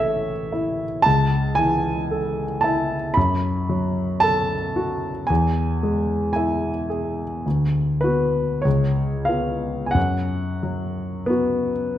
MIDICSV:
0, 0, Header, 1, 2, 480
1, 0, Start_track
1, 0, Key_signature, 3, "major"
1, 0, Tempo, 1069519
1, 1420, Time_signature, 4, 2, 24, 8
1, 1420, Key_signature, 3, "minor"
1, 3346, Tempo, 1195219
1, 3826, Tempo, 1307190
1, 4306, Tempo, 1354402
1, 5023, End_track
2, 0, Start_track
2, 0, Title_t, "Grand piano"
2, 0, Program_c, 0, 0
2, 0, Control_c, 0, 64, 127
2, 0, Note_on_c, 0, 33, 40
2, 0, Note_on_c, 0, 52, 34
2, 0, Note_on_c, 0, 69, 39
2, 0, Note_on_c, 0, 73, 60
2, 0, Note_on_c, 0, 76, 69
2, 133, Note_off_c, 0, 52, 0
2, 235, Note_on_c, 0, 64, 38
2, 378, Note_off_c, 0, 69, 0
2, 455, Note_off_c, 0, 33, 0
2, 460, Note_on_c, 0, 81, 78
2, 466, Note_off_c, 0, 76, 0
2, 475, Note_off_c, 0, 64, 0
2, 475, Note_on_c, 0, 37, 50
2, 479, Control_c, 0, 64, 0
2, 481, Note_off_c, 0, 73, 0
2, 552, Control_c, 0, 64, 127
2, 696, Note_on_c, 0, 80, 77
2, 701, Note_off_c, 0, 81, 0
2, 711, Note_on_c, 0, 52, 39
2, 947, Note_on_c, 0, 69, 40
2, 1090, Note_off_c, 0, 52, 0
2, 1171, Note_on_c, 0, 81, 65
2, 1178, Note_off_c, 0, 80, 0
2, 1186, Note_on_c, 0, 64, 45
2, 1327, Note_off_c, 0, 69, 0
2, 1403, Note_off_c, 0, 37, 0
2, 1408, Note_on_c, 0, 83, 67
2, 1413, Note_off_c, 0, 81, 0
2, 1421, Note_off_c, 0, 64, 0
2, 1422, Note_on_c, 0, 42, 44
2, 1425, Control_c, 0, 64, 0
2, 1493, Control_c, 0, 64, 127
2, 1658, Note_on_c, 0, 54, 41
2, 1886, Note_on_c, 0, 81, 81
2, 1892, Note_off_c, 0, 83, 0
2, 1900, Note_on_c, 0, 69, 41
2, 2043, Note_off_c, 0, 54, 0
2, 2137, Note_on_c, 0, 66, 41
2, 2284, Note_off_c, 0, 69, 0
2, 2361, Note_off_c, 0, 42, 0
2, 2364, Note_on_c, 0, 80, 68
2, 2372, Note_off_c, 0, 81, 0
2, 2377, Note_off_c, 0, 66, 0
2, 2378, Note_on_c, 0, 40, 49
2, 2384, Control_c, 0, 64, 0
2, 2446, Control_c, 0, 64, 127
2, 2617, Note_on_c, 0, 56, 40
2, 2833, Note_off_c, 0, 80, 0
2, 2840, Note_on_c, 0, 80, 62
2, 2855, Note_on_c, 0, 64, 39
2, 3001, Note_off_c, 0, 56, 0
2, 3089, Note_off_c, 0, 80, 0
2, 3096, Note_on_c, 0, 68, 40
2, 3244, Note_off_c, 0, 64, 0
2, 3328, Note_off_c, 0, 40, 0
2, 3345, Note_off_c, 0, 68, 0
2, 3348, Note_on_c, 0, 38, 36
2, 3352, Control_c, 0, 64, 0
2, 3418, Control_c, 0, 64, 127
2, 3567, Note_on_c, 0, 71, 57
2, 3581, Note_on_c, 0, 59, 32
2, 3581, Note_on_c, 0, 66, 34
2, 3810, Note_off_c, 0, 59, 0
2, 3810, Note_off_c, 0, 66, 0
2, 3812, Note_off_c, 0, 38, 0
2, 3812, Note_on_c, 0, 73, 58
2, 3819, Note_off_c, 0, 71, 0
2, 3825, Note_on_c, 0, 37, 44
2, 3833, Control_c, 0, 64, 0
2, 3889, Control_c, 0, 64, 127
2, 4046, Note_on_c, 0, 77, 60
2, 4054, Note_off_c, 0, 73, 0
2, 4058, Note_on_c, 0, 59, 27
2, 4060, Note_on_c, 0, 65, 33
2, 4268, Note_off_c, 0, 77, 0
2, 4272, Note_on_c, 0, 80, 41
2, 4288, Note_on_c, 0, 78, 63
2, 4290, Note_off_c, 0, 59, 0
2, 4291, Note_off_c, 0, 37, 0
2, 4291, Note_off_c, 0, 65, 0
2, 4301, Note_on_c, 0, 42, 37
2, 4304, Note_off_c, 0, 80, 0
2, 4312, Control_c, 0, 64, 0
2, 4376, Control_c, 0, 64, 127
2, 4544, Note_on_c, 0, 54, 34
2, 4768, Note_on_c, 0, 59, 62
2, 4776, Note_off_c, 0, 78, 0
2, 4781, Note_on_c, 0, 66, 31
2, 4927, Note_off_c, 0, 54, 0
2, 5023, Note_off_c, 0, 42, 0
2, 5023, Note_off_c, 0, 59, 0
2, 5023, Note_off_c, 0, 66, 0
2, 5023, End_track
0, 0, End_of_file